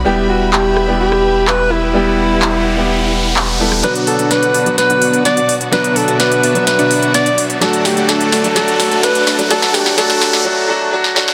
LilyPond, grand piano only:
\new Staff \with { instrumentName = "Grand piano" } { \time 4/4 \key b \minor \tempo 4 = 127 <g b e' g'>4.~ <g b e' g'>16 <g b e' g'>2~ <g b e' g'>16 | <g b e' g'>4.~ <g b e' g'>16 <g b e' g'>4.~ <g b e' g'>16 <g b e' a'>8 | <fis b d' fis'>4.~ <fis b d' fis'>16 <fis b d' fis'>2~ <fis b d' fis'>16 | <fis b d' fis'>4.~ <fis b d' fis'>16 <fis b d' fis'>2~ <fis b d' fis'>16 |
<fis a d' fis'>4.~ <fis a d' fis'>16 <fis a d' fis'>16 <fis a d' fis'>4.~ <fis a d' fis'>16 <fis a d' fis'>16 | <fis a d' fis'>4 <fis a d' fis'>4 <fis a d' fis'>8 <fis a d' fis'>8 <fis a d' fis'>8 <fis a d' fis'>8 | }